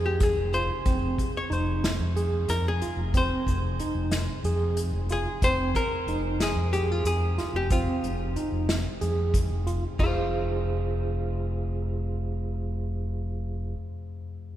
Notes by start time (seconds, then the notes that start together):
Already playing: F2 G#4
0.06 G4
0.20 G#4, kick, snare, closed hi-hat
0.36 F1
0.53 F4 C5, closed hi-hat
0.85 F1 C4, kick, closed hi-hat
1.18 kick, closed hi-hat
1.37 C#5
1.50 F1 D#4 C5, closed hi-hat
1.84 snare, closed hi-hat
2.00 F2
2.16 G#4, closed hi-hat
2.49 F2 A#4, snare, closed hi-hat
2.68 G#4
2.82 F4, closed hi-hat
2.97 F1
3.14 C4 C5, kick, closed hi-hat
3.47 F1, kick, closed hi-hat
3.79 D#4, closed hi-hat
3.95 F1
4.11 snare, closed hi-hat
4.44 F2 G#4, closed hi-hat
4.77 closed hi-hat
4.93 F1
5.09 F4 G#4, closed hi-hat
5.42 F1 C4 C5, kick, closed hi-hat
5.75 A#4, kick, closed hi-hat
6.07 F1 D#4, closed hi-hat
6.40 G#4, snare, closed hi-hat
6.56 F2
6.73 G4 G#4, closed hi-hat
6.92 F4
7.05 F2 G#4, closed hi-hat
7.38 F4, snare, closed hi-hat
7.54 F1 G4
7.70 C4 F4, kick, closed hi-hat
8.03 F1, closed hi-hat
8.36 D#4, closed hi-hat
8.52 F1
8.69 snare, closed hi-hat
9.01 F2 G#4, closed hi-hat
9.34 kick, closed hi-hat
9.50 F1
9.67 F4, closed hi-hat
9.99 F1 F4, kick, crash
10.03 G#4
10.07 C5
10.12 F5